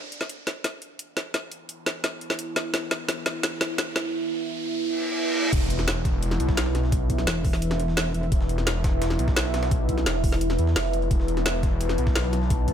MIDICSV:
0, 0, Header, 1, 8, 480
1, 0, Start_track
1, 0, Tempo, 348837
1, 1847, Time_signature, 4, 2, 24, 8
1, 17521, End_track
2, 0, Start_track
2, 0, Title_t, "Ambient pad"
2, 0, Program_c, 0, 92
2, 0, Note_on_c, 0, 64, 79
2, 0, Note_on_c, 0, 71, 69
2, 0, Note_on_c, 0, 76, 87
2, 7551, Note_off_c, 0, 64, 0
2, 7551, Note_off_c, 0, 76, 0
2, 7552, Note_off_c, 0, 71, 0
2, 7606, Note_on_c, 0, 64, 79
2, 7607, Note_on_c, 0, 71, 73
2, 7607, Note_on_c, 0, 76, 91
2, 15256, Note_off_c, 0, 76, 0
2, 15287, Note_on_c, 0, 81, 95
2, 17521, Note_off_c, 0, 64, 0
2, 17521, Note_off_c, 0, 71, 0
2, 17521, Note_off_c, 0, 81, 0
2, 17521, End_track
3, 0, Start_track
3, 0, Title_t, "Detuned saw bass"
3, 0, Program_c, 1, 39
3, 7606, Note_on_c, 1, 28, 97
3, 8787, Note_off_c, 1, 28, 0
3, 8807, Note_on_c, 1, 35, 98
3, 9988, Note_off_c, 1, 35, 0
3, 11447, Note_on_c, 1, 28, 103
3, 12628, Note_off_c, 1, 28, 0
3, 12648, Note_on_c, 1, 35, 103
3, 13828, Note_off_c, 1, 35, 0
3, 13848, Note_on_c, 1, 28, 107
3, 14548, Note_off_c, 1, 28, 0
3, 14568, Note_on_c, 1, 40, 102
3, 14788, Note_off_c, 1, 40, 0
3, 14808, Note_on_c, 1, 29, 98
3, 15268, Note_off_c, 1, 29, 0
3, 15287, Note_on_c, 1, 28, 96
3, 16468, Note_off_c, 1, 28, 0
3, 16487, Note_on_c, 1, 35, 103
3, 17521, Note_off_c, 1, 35, 0
3, 17521, End_track
4, 0, Start_track
4, 0, Title_t, "Wobble bass"
4, 0, Program_c, 2, 39
4, 10007, Note_on_c, 2, 28, 96
4, 11188, Note_off_c, 2, 28, 0
4, 11207, Note_on_c, 2, 28, 101
4, 11428, Note_off_c, 2, 28, 0
4, 17521, End_track
5, 0, Start_track
5, 0, Title_t, "Impact"
5, 0, Program_c, 3, 103
5, 7606, Note_on_c, 3, 60, 77
5, 9526, Note_off_c, 3, 60, 0
5, 17521, End_track
6, 0, Start_track
6, 0, Title_t, "Reverse cymbal"
6, 0, Program_c, 4, 119
6, 6646, Note_on_c, 4, 60, 78
6, 7606, Note_off_c, 4, 60, 0
6, 17521, End_track
7, 0, Start_track
7, 0, Title_t, "Riser"
7, 0, Program_c, 5, 103
7, 0, Note_on_c, 5, 60, 75
7, 7607, Note_off_c, 5, 60, 0
7, 17521, End_track
8, 0, Start_track
8, 0, Title_t, "Drums"
8, 166, Note_on_c, 9, 42, 65
8, 286, Note_on_c, 9, 38, 44
8, 303, Note_off_c, 9, 42, 0
8, 406, Note_on_c, 9, 42, 90
8, 423, Note_off_c, 9, 38, 0
8, 543, Note_off_c, 9, 42, 0
8, 646, Note_on_c, 9, 38, 51
8, 646, Note_on_c, 9, 42, 68
8, 783, Note_off_c, 9, 38, 0
8, 783, Note_off_c, 9, 42, 0
8, 885, Note_on_c, 9, 38, 55
8, 885, Note_on_c, 9, 42, 95
8, 1023, Note_off_c, 9, 38, 0
8, 1023, Note_off_c, 9, 42, 0
8, 1126, Note_on_c, 9, 42, 66
8, 1263, Note_off_c, 9, 42, 0
8, 1365, Note_on_c, 9, 42, 99
8, 1502, Note_off_c, 9, 42, 0
8, 1605, Note_on_c, 9, 38, 54
8, 1605, Note_on_c, 9, 42, 66
8, 1743, Note_off_c, 9, 38, 0
8, 1743, Note_off_c, 9, 42, 0
8, 1846, Note_on_c, 9, 38, 56
8, 1846, Note_on_c, 9, 42, 88
8, 1983, Note_off_c, 9, 38, 0
8, 1983, Note_off_c, 9, 42, 0
8, 2085, Note_on_c, 9, 42, 64
8, 2223, Note_off_c, 9, 42, 0
8, 2325, Note_on_c, 9, 42, 95
8, 2463, Note_off_c, 9, 42, 0
8, 2565, Note_on_c, 9, 38, 64
8, 2565, Note_on_c, 9, 42, 65
8, 2703, Note_off_c, 9, 38, 0
8, 2703, Note_off_c, 9, 42, 0
8, 2805, Note_on_c, 9, 38, 68
8, 2805, Note_on_c, 9, 42, 92
8, 2943, Note_off_c, 9, 38, 0
8, 2943, Note_off_c, 9, 42, 0
8, 3046, Note_on_c, 9, 42, 66
8, 3166, Note_on_c, 9, 38, 60
8, 3183, Note_off_c, 9, 42, 0
8, 3286, Note_on_c, 9, 42, 98
8, 3303, Note_off_c, 9, 38, 0
8, 3423, Note_off_c, 9, 42, 0
8, 3525, Note_on_c, 9, 38, 69
8, 3525, Note_on_c, 9, 42, 62
8, 3663, Note_off_c, 9, 38, 0
8, 3663, Note_off_c, 9, 42, 0
8, 3766, Note_on_c, 9, 38, 75
8, 3766, Note_on_c, 9, 42, 86
8, 3903, Note_off_c, 9, 38, 0
8, 3903, Note_off_c, 9, 42, 0
8, 4006, Note_on_c, 9, 38, 75
8, 4006, Note_on_c, 9, 42, 62
8, 4144, Note_off_c, 9, 38, 0
8, 4144, Note_off_c, 9, 42, 0
8, 4246, Note_on_c, 9, 38, 81
8, 4246, Note_on_c, 9, 42, 96
8, 4383, Note_off_c, 9, 38, 0
8, 4383, Note_off_c, 9, 42, 0
8, 4485, Note_on_c, 9, 38, 81
8, 4485, Note_on_c, 9, 42, 63
8, 4623, Note_off_c, 9, 38, 0
8, 4623, Note_off_c, 9, 42, 0
8, 4725, Note_on_c, 9, 38, 89
8, 4725, Note_on_c, 9, 42, 92
8, 4863, Note_off_c, 9, 38, 0
8, 4863, Note_off_c, 9, 42, 0
8, 4966, Note_on_c, 9, 38, 84
8, 4966, Note_on_c, 9, 42, 65
8, 5104, Note_off_c, 9, 38, 0
8, 5104, Note_off_c, 9, 42, 0
8, 5206, Note_on_c, 9, 38, 91
8, 5206, Note_on_c, 9, 42, 96
8, 5344, Note_off_c, 9, 38, 0
8, 5344, Note_off_c, 9, 42, 0
8, 5446, Note_on_c, 9, 38, 82
8, 5446, Note_on_c, 9, 42, 61
8, 5584, Note_off_c, 9, 38, 0
8, 5584, Note_off_c, 9, 42, 0
8, 7606, Note_on_c, 9, 36, 116
8, 7606, Note_on_c, 9, 42, 95
8, 7606, Note_on_c, 9, 49, 102
8, 7726, Note_on_c, 9, 38, 41
8, 7743, Note_off_c, 9, 36, 0
8, 7744, Note_off_c, 9, 42, 0
8, 7744, Note_off_c, 9, 49, 0
8, 7846, Note_on_c, 9, 42, 69
8, 7863, Note_off_c, 9, 38, 0
8, 7966, Note_on_c, 9, 40, 36
8, 7983, Note_off_c, 9, 42, 0
8, 8085, Note_on_c, 9, 38, 116
8, 8085, Note_on_c, 9, 42, 93
8, 8086, Note_off_c, 9, 38, 0
8, 8086, Note_off_c, 9, 42, 0
8, 8086, Note_on_c, 9, 38, 116
8, 8086, Note_on_c, 9, 42, 99
8, 8104, Note_off_c, 9, 40, 0
8, 8224, Note_off_c, 9, 38, 0
8, 8224, Note_off_c, 9, 42, 0
8, 8325, Note_on_c, 9, 38, 51
8, 8325, Note_on_c, 9, 42, 68
8, 8326, Note_off_c, 9, 42, 0
8, 8326, Note_on_c, 9, 36, 116
8, 8326, Note_on_c, 9, 42, 70
8, 8463, Note_off_c, 9, 38, 0
8, 8464, Note_off_c, 9, 36, 0
8, 8464, Note_off_c, 9, 42, 0
8, 8566, Note_on_c, 9, 42, 99
8, 8687, Note_on_c, 9, 40, 51
8, 8704, Note_off_c, 9, 42, 0
8, 8805, Note_on_c, 9, 42, 72
8, 8806, Note_off_c, 9, 42, 0
8, 8806, Note_on_c, 9, 42, 69
8, 8824, Note_off_c, 9, 40, 0
8, 8924, Note_on_c, 9, 38, 56
8, 8926, Note_on_c, 9, 36, 97
8, 8944, Note_off_c, 9, 42, 0
8, 9044, Note_off_c, 9, 38, 0
8, 9044, Note_on_c, 9, 38, 118
8, 9044, Note_on_c, 9, 42, 91
8, 9046, Note_off_c, 9, 38, 0
8, 9046, Note_off_c, 9, 42, 0
8, 9046, Note_on_c, 9, 38, 120
8, 9046, Note_on_c, 9, 42, 103
8, 9064, Note_off_c, 9, 36, 0
8, 9165, Note_off_c, 9, 38, 0
8, 9165, Note_on_c, 9, 38, 56
8, 9183, Note_off_c, 9, 42, 0
8, 9286, Note_on_c, 9, 40, 35
8, 9286, Note_on_c, 9, 42, 66
8, 9303, Note_off_c, 9, 38, 0
8, 9406, Note_on_c, 9, 38, 39
8, 9424, Note_off_c, 9, 40, 0
8, 9424, Note_off_c, 9, 42, 0
8, 9525, Note_on_c, 9, 42, 90
8, 9526, Note_off_c, 9, 42, 0
8, 9526, Note_on_c, 9, 36, 126
8, 9526, Note_on_c, 9, 42, 94
8, 9544, Note_off_c, 9, 38, 0
8, 9664, Note_off_c, 9, 36, 0
8, 9664, Note_off_c, 9, 42, 0
8, 9766, Note_on_c, 9, 36, 70
8, 9766, Note_on_c, 9, 42, 71
8, 9886, Note_on_c, 9, 40, 37
8, 9903, Note_off_c, 9, 36, 0
8, 9903, Note_off_c, 9, 42, 0
8, 10005, Note_on_c, 9, 38, 120
8, 10005, Note_on_c, 9, 42, 89
8, 10023, Note_off_c, 9, 40, 0
8, 10143, Note_off_c, 9, 38, 0
8, 10143, Note_off_c, 9, 42, 0
8, 10245, Note_on_c, 9, 46, 77
8, 10246, Note_on_c, 9, 36, 111
8, 10246, Note_on_c, 9, 42, 71
8, 10366, Note_on_c, 9, 38, 39
8, 10383, Note_off_c, 9, 42, 0
8, 10383, Note_off_c, 9, 46, 0
8, 10384, Note_off_c, 9, 36, 0
8, 10486, Note_on_c, 9, 42, 90
8, 10504, Note_off_c, 9, 38, 0
8, 10606, Note_on_c, 9, 38, 49
8, 10607, Note_on_c, 9, 40, 49
8, 10624, Note_off_c, 9, 42, 0
8, 10726, Note_on_c, 9, 42, 69
8, 10744, Note_off_c, 9, 38, 0
8, 10744, Note_off_c, 9, 40, 0
8, 10847, Note_on_c, 9, 38, 40
8, 10864, Note_off_c, 9, 42, 0
8, 10966, Note_off_c, 9, 38, 0
8, 10966, Note_on_c, 9, 38, 120
8, 10966, Note_on_c, 9, 46, 81
8, 10967, Note_off_c, 9, 38, 0
8, 10967, Note_on_c, 9, 38, 127
8, 10967, Note_on_c, 9, 42, 98
8, 11087, Note_off_c, 9, 38, 0
8, 11087, Note_on_c, 9, 38, 47
8, 11104, Note_off_c, 9, 46, 0
8, 11105, Note_off_c, 9, 42, 0
8, 11206, Note_on_c, 9, 42, 73
8, 11207, Note_off_c, 9, 42, 0
8, 11207, Note_on_c, 9, 42, 66
8, 11224, Note_off_c, 9, 38, 0
8, 11326, Note_off_c, 9, 42, 0
8, 11326, Note_on_c, 9, 42, 46
8, 11446, Note_off_c, 9, 42, 0
8, 11446, Note_on_c, 9, 42, 97
8, 11447, Note_off_c, 9, 42, 0
8, 11447, Note_on_c, 9, 36, 123
8, 11447, Note_on_c, 9, 42, 93
8, 11567, Note_on_c, 9, 38, 41
8, 11584, Note_off_c, 9, 36, 0
8, 11584, Note_off_c, 9, 42, 0
8, 11687, Note_on_c, 9, 42, 70
8, 11704, Note_off_c, 9, 38, 0
8, 11807, Note_on_c, 9, 40, 36
8, 11825, Note_off_c, 9, 42, 0
8, 11927, Note_on_c, 9, 38, 125
8, 11927, Note_on_c, 9, 42, 93
8, 11945, Note_off_c, 9, 40, 0
8, 12064, Note_off_c, 9, 38, 0
8, 12064, Note_off_c, 9, 42, 0
8, 12167, Note_on_c, 9, 36, 120
8, 12167, Note_on_c, 9, 38, 106
8, 12167, Note_on_c, 9, 42, 81
8, 12304, Note_off_c, 9, 36, 0
8, 12305, Note_off_c, 9, 38, 0
8, 12305, Note_off_c, 9, 42, 0
8, 12407, Note_on_c, 9, 38, 108
8, 12407, Note_on_c, 9, 42, 93
8, 12527, Note_on_c, 9, 40, 50
8, 12544, Note_off_c, 9, 38, 0
8, 12544, Note_off_c, 9, 42, 0
8, 12646, Note_on_c, 9, 42, 67
8, 12647, Note_off_c, 9, 42, 0
8, 12647, Note_on_c, 9, 42, 74
8, 12664, Note_off_c, 9, 40, 0
8, 12767, Note_on_c, 9, 36, 108
8, 12767, Note_on_c, 9, 38, 55
8, 12784, Note_off_c, 9, 42, 0
8, 12886, Note_off_c, 9, 38, 0
8, 12886, Note_on_c, 9, 38, 127
8, 12886, Note_on_c, 9, 42, 91
8, 12887, Note_off_c, 9, 38, 0
8, 12887, Note_off_c, 9, 42, 0
8, 12887, Note_on_c, 9, 38, 117
8, 12887, Note_on_c, 9, 42, 92
8, 12905, Note_off_c, 9, 36, 0
8, 13007, Note_off_c, 9, 38, 0
8, 13007, Note_on_c, 9, 38, 57
8, 13024, Note_off_c, 9, 42, 0
8, 13126, Note_off_c, 9, 38, 0
8, 13126, Note_on_c, 9, 38, 104
8, 13126, Note_on_c, 9, 40, 32
8, 13126, Note_on_c, 9, 42, 83
8, 13247, Note_off_c, 9, 38, 0
8, 13247, Note_off_c, 9, 42, 0
8, 13247, Note_on_c, 9, 38, 101
8, 13247, Note_on_c, 9, 42, 82
8, 13264, Note_off_c, 9, 40, 0
8, 13366, Note_off_c, 9, 42, 0
8, 13366, Note_on_c, 9, 42, 90
8, 13367, Note_on_c, 9, 36, 122
8, 13384, Note_off_c, 9, 38, 0
8, 13504, Note_off_c, 9, 42, 0
8, 13505, Note_off_c, 9, 36, 0
8, 13606, Note_on_c, 9, 42, 69
8, 13607, Note_off_c, 9, 42, 0
8, 13607, Note_on_c, 9, 36, 70
8, 13607, Note_on_c, 9, 42, 64
8, 13726, Note_on_c, 9, 40, 33
8, 13744, Note_off_c, 9, 42, 0
8, 13745, Note_off_c, 9, 36, 0
8, 13846, Note_on_c, 9, 38, 127
8, 13846, Note_on_c, 9, 42, 88
8, 13847, Note_off_c, 9, 38, 0
8, 13847, Note_off_c, 9, 42, 0
8, 13847, Note_on_c, 9, 38, 122
8, 13847, Note_on_c, 9, 42, 90
8, 13864, Note_off_c, 9, 40, 0
8, 13984, Note_off_c, 9, 38, 0
8, 13984, Note_off_c, 9, 42, 0
8, 14086, Note_on_c, 9, 42, 73
8, 14087, Note_on_c, 9, 36, 112
8, 14087, Note_on_c, 9, 46, 79
8, 14207, Note_on_c, 9, 38, 37
8, 14224, Note_off_c, 9, 42, 0
8, 14224, Note_off_c, 9, 46, 0
8, 14225, Note_off_c, 9, 36, 0
8, 14326, Note_on_c, 9, 42, 86
8, 14344, Note_off_c, 9, 38, 0
8, 14446, Note_on_c, 9, 38, 49
8, 14447, Note_on_c, 9, 40, 47
8, 14464, Note_off_c, 9, 42, 0
8, 14566, Note_on_c, 9, 42, 70
8, 14584, Note_off_c, 9, 38, 0
8, 14584, Note_off_c, 9, 40, 0
8, 14687, Note_on_c, 9, 38, 40
8, 14704, Note_off_c, 9, 42, 0
8, 14806, Note_off_c, 9, 38, 0
8, 14806, Note_on_c, 9, 38, 113
8, 14806, Note_on_c, 9, 42, 90
8, 14806, Note_on_c, 9, 46, 85
8, 14927, Note_off_c, 9, 38, 0
8, 14927, Note_on_c, 9, 38, 50
8, 14943, Note_off_c, 9, 42, 0
8, 14944, Note_off_c, 9, 46, 0
8, 15046, Note_on_c, 9, 42, 60
8, 15048, Note_off_c, 9, 42, 0
8, 15048, Note_on_c, 9, 42, 73
8, 15064, Note_off_c, 9, 38, 0
8, 15167, Note_off_c, 9, 42, 0
8, 15167, Note_on_c, 9, 42, 45
8, 15285, Note_off_c, 9, 42, 0
8, 15285, Note_on_c, 9, 42, 86
8, 15287, Note_off_c, 9, 42, 0
8, 15287, Note_on_c, 9, 36, 119
8, 15287, Note_on_c, 9, 42, 92
8, 15407, Note_on_c, 9, 38, 41
8, 15424, Note_off_c, 9, 36, 0
8, 15425, Note_off_c, 9, 42, 0
8, 15526, Note_on_c, 9, 42, 60
8, 15527, Note_off_c, 9, 42, 0
8, 15527, Note_on_c, 9, 42, 71
8, 15545, Note_off_c, 9, 38, 0
8, 15645, Note_on_c, 9, 40, 33
8, 15665, Note_off_c, 9, 42, 0
8, 15765, Note_on_c, 9, 38, 120
8, 15765, Note_on_c, 9, 42, 94
8, 15766, Note_off_c, 9, 38, 0
8, 15766, Note_off_c, 9, 42, 0
8, 15766, Note_on_c, 9, 38, 123
8, 15766, Note_on_c, 9, 42, 93
8, 15783, Note_off_c, 9, 40, 0
8, 15903, Note_off_c, 9, 38, 0
8, 15903, Note_off_c, 9, 42, 0
8, 16006, Note_on_c, 9, 36, 115
8, 16006, Note_on_c, 9, 38, 54
8, 16006, Note_on_c, 9, 42, 69
8, 16144, Note_off_c, 9, 36, 0
8, 16144, Note_off_c, 9, 38, 0
8, 16144, Note_off_c, 9, 42, 0
8, 16246, Note_on_c, 9, 42, 90
8, 16366, Note_on_c, 9, 40, 48
8, 16384, Note_off_c, 9, 42, 0
8, 16486, Note_on_c, 9, 42, 69
8, 16503, Note_off_c, 9, 40, 0
8, 16606, Note_on_c, 9, 36, 101
8, 16606, Note_on_c, 9, 38, 56
8, 16624, Note_off_c, 9, 42, 0
8, 16726, Note_off_c, 9, 38, 0
8, 16726, Note_on_c, 9, 38, 115
8, 16726, Note_on_c, 9, 42, 91
8, 16744, Note_off_c, 9, 36, 0
8, 16846, Note_off_c, 9, 38, 0
8, 16846, Note_on_c, 9, 38, 56
8, 16864, Note_off_c, 9, 42, 0
8, 16965, Note_on_c, 9, 40, 31
8, 16965, Note_on_c, 9, 42, 60
8, 16967, Note_off_c, 9, 42, 0
8, 16967, Note_on_c, 9, 42, 67
8, 16984, Note_off_c, 9, 38, 0
8, 17086, Note_on_c, 9, 38, 37
8, 17103, Note_off_c, 9, 40, 0
8, 17104, Note_off_c, 9, 42, 0
8, 17205, Note_on_c, 9, 42, 91
8, 17206, Note_on_c, 9, 36, 114
8, 17207, Note_off_c, 9, 42, 0
8, 17207, Note_on_c, 9, 42, 93
8, 17224, Note_off_c, 9, 38, 0
8, 17344, Note_off_c, 9, 36, 0
8, 17344, Note_off_c, 9, 42, 0
8, 17446, Note_on_c, 9, 36, 64
8, 17446, Note_on_c, 9, 42, 64
8, 17447, Note_off_c, 9, 42, 0
8, 17447, Note_on_c, 9, 42, 73
8, 17521, Note_off_c, 9, 36, 0
8, 17521, Note_off_c, 9, 42, 0
8, 17521, End_track
0, 0, End_of_file